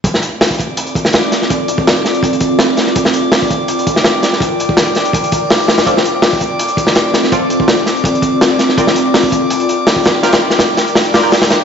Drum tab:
HH |x-x-o-x-xxx-x-x-|x-x-xxxxxxx-x-x-|x-x-o-x-xxx-x-x-|x-x-xxxxxxx-o-oo|
SD |-o--o------oo-oo|----o-o-----o-oo|-o--o------oo-oo|----o-o-----o-oo|
BD |o----oo---o-----|o--o----o-o-----|o----oo---o-----|o--o----o-o-----|

HH |x-x-o-x-xxx-x-x-|x-x-xxxxxxx-x-x-|x-x-o-x-xxx-o-x-|xx-xx-xxoxo-oox-|
SD |-o--o------oo-oo|----o-o-----o-oo|-o--o-------o-o-|oo-oo-o-o-o-ooo-|
BD |o----oo---o-----|o--o----o-o-----|o----oo------o--|----------------|